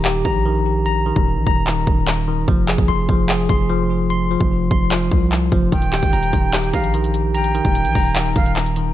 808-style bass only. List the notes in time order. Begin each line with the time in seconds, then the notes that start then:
Already playing: D#1
0.25 A#1
1.16 D#1
1.36 A#1
1.47 D#1
1.87 D#1
2.48 F1
2.78 F1
2.88 F1
3.09 F1
3.49 F1
4.41 F1
4.71 F1
5.12 C2
5.52 F1
5.72 D#1
6.03 D#1
6.13 D#1
6.33 D#1
6.74 A#1
7.65 D#1
7.85 A#1
7.95 D#1
8.36 D#1